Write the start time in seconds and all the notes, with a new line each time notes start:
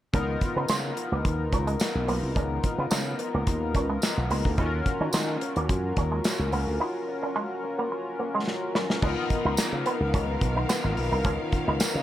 0.13 C#2 B3 C#4 D#4 F4 A#4, kick, closed hi-hat
0.41 muted clean electric guitar stroke, kick, closed hi-hat
0.56 C#3 B3
0.68 C#3 G#3, snare, clap, closed hi-hat, tambourine
0.97 muted clean electric guitar stroke, closed hi-hat
1.12 C#2 A#3
1.25 D#2, muted clean electric guitar stroke, kick, closed hi-hat
1.52 C#2 C#4, kick, closed hi-hat
1.67 G#3, closed hi-hat
1.80 snare, clap, closed hi-hat, tambourine
1.95 B1
2.08 B1 A#3, open hi-hat
2.23 C2
2.36 C#2 C#4, kick, closed hi-hat
2.64 muted clean electric guitar stroke, kick, closed hi-hat
2.78 C#3 B3
2.91 C#3 G#3, snare, clap, closed hi-hat, tambourine
3.19 muted clean electric guitar stroke, closed hi-hat
3.34 C#2 A#3
3.47 D#2, muted clean electric guitar stroke, kick, closed hi-hat
3.75 C#2 C#4, kick, closed hi-hat
3.90 G#3
4.02 snare, clap, closed hi-hat, tambourine
4.17 B1
4.30 C#2 A#3, open hi-hat
4.45 D2, kick
4.57 D#2 C#4 D#4 F4 F#4 A4, kick, closed hi-hat
4.66 A#4
4.86 muted clean electric guitar stroke, kick, closed hi-hat
5.01 D#3 C#4
5.13 D#3 G#3, snare, clap, closed hi-hat, tambourine
5.41 muted clean electric guitar stroke, closed hi-hat
5.56 D#2 A#3, closed hi-hat
5.69 F#2, muted clean electric guitar stroke, kick, closed hi-hat
5.97 D#2 C#4, kick, closed hi-hat
6.12 G#3
6.24 snare, clap, closed hi-hat, tambourine
6.39 C#2
6.52 C#2 A#3, open hi-hat
6.67 D2
6.80 D#4
7.08 muted clean electric guitar stroke
7.23 C#4
7.36 G#3
7.64 muted clean electric guitar stroke
7.78 A#3
7.92 muted clean electric guitar stroke
8.19 A#3
8.35 G#3
8.48 snare
8.75 F#3, snare
8.90 snare
9.02 C#2 D#3 B3 C#4 D#4 F4 A#4 F5, kick, crash
9.30 muted clean electric guitar stroke, kick, closed hi-hat
9.45 C#2 D#4
9.57 snare, clap, closed hi-hat, tambourine
9.73 C#3
9.86 B3, closed hi-hat
10.00 C#2
10.14 C#2 C#4, kick, closed hi-hat
10.41 B1, muted clean electric guitar stroke, kick, closed hi-hat
10.56 D#4
10.69 B3, snare, clap, closed hi-hat, tambourine
10.84 G#1, muted clean electric guitar stroke
10.97 B1, open hi-hat
11.12 C2 D#4
11.25 C#2 C#4, kick, closed hi-hat
11.52 muted clean electric guitar stroke, kick, closed hi-hat
11.68 C#2 D#4
11.80 muted slap bass stroke, snare, clap, closed hi-hat, tambourine
11.95 C#3